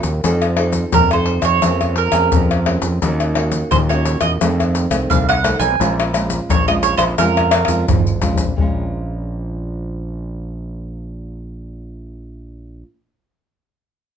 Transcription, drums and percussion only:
0.03 pandeiro, maracas
0.24 pandeiro, maracas, surdo
0.42 pandeiro, tamborim, maracas
0.57 pandeiro, tamborim
0.73 pandeiro, maracas, surdo
0.92 pandeiro, maracas, surdo
1.11 pandeiro, tamborim, maracas
1.26 pandeiro
1.42 pandeiro, tamborim, maracas, surdo
1.62 pandeiro, tamborim, maracas, surdo
1.81 pandeiro, tamborim, maracas, surdo
1.96 pandeiro
2.12 pandeiro, tamborim, maracas, surdo
2.32 pandeiro, maracas, surdo
2.51 pandeiro, tamborim, maracas
2.66 pandeiro, tamborim, surdo
2.82 pandeiro, maracas
3.02 pandeiro, maracas, surdo
3.20 pandeiro, tamborim, maracas
3.35 pandeiro, tamborim
3.52 pandeiro, maracas, surdo
3.72 pandeiro, maracas, surdo
3.90 pandeiro, tamborim, maracas
4.05 pandeiro, maracas
4.21 pandeiro, tamborim, maracas, surdo
4.41 pandeiro, tamborim, maracas, surdo
4.60 pandeiro, tamborim, maracas, surdo
4.75 pandeiro, maracas
4.91 pandeiro, tamborim, maracas, surdo
5.11 pandeiro, maracas, surdo
5.30 pandeiro, tamborim, maracas
5.44 pandeiro, tamborim, maracas, surdo
5.60 pandeiro, maracas
5.81 pandeiro, maracas, surdo
6.00 pandeiro, tamborim, maracas
6.14 pandeiro, tamborim, maracas
6.30 pandeiro, maracas, surdo
6.50 pandeiro, maracas, surdo
6.68 pandeiro, tamborim, maracas
6.83 pandeiro, maracas
6.98 pandeiro, tamborim, maracas, surdo
7.18 pandeiro, tamborim, maracas, surdo
7.37 pandeiro, tamborim, maracas, surdo
7.51 pandeiro, tamborim, maracas
7.65 pandeiro, tamborim, maracas, surdo
7.88 surdo, pandeiro, maracas
8.00 surdo
8.07 pandeiro, maracas
8.22 pandeiro, maracas, surdo
8.34 pandeiro, maracas, surdo
8.46 surdo
8.58 surdo

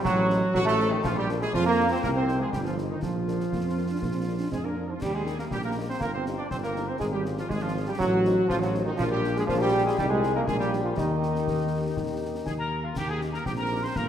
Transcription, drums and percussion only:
0.05 concert bass drum, snare
0.30 snare
0.55 concert bass drum, snare
0.67 snare
0.80 snare
1.04 concert bass drum, snare, crash
1.29 snare
1.42 snare
1.54 concert bass drum, snare
2.03 concert bass drum, snare
2.28 snare
2.53 concert bass drum, snare
2.65 snare
2.78 snare
3.02 concert bass drum, snare
3.28 snare
3.40 snare
3.53 concert bass drum, snare
4.02 concert bass drum, snare
4.52 concert bass drum, snare
5.02 concert bass drum, snare, crash
5.27 snare
5.39 snare
5.51 concert bass drum, snare
6.01 concert bass drum, snare
6.26 snare
6.51 concert bass drum, snare
6.63 snare
6.76 snare
7.00 concert bass drum, snare
7.25 snare
7.37 snare
7.50 concert bass drum, snare
8.00 concert bass drum, snare
8.25 snare
8.50 concert bass drum, snare
8.62 snare
8.74 snare
8.99 concert bass drum, snare, crash
9.24 snare
9.36 snare
9.49 concert bass drum, snare
9.98 concert bass drum, snare
10.23 snare
10.48 concert bass drum, snare
10.60 snare
10.73 snare
10.98 concert bass drum, snare
11.23 snare
11.35 snare
11.48 concert bass drum, snare
11.97 concert bass drum, snare
12.46 concert bass drum, snare
12.96 concert bass drum, snare, crash
13.21 snare
13.34 snare
13.46 concert bass drum, snare
13.96 concert bass drum, snare

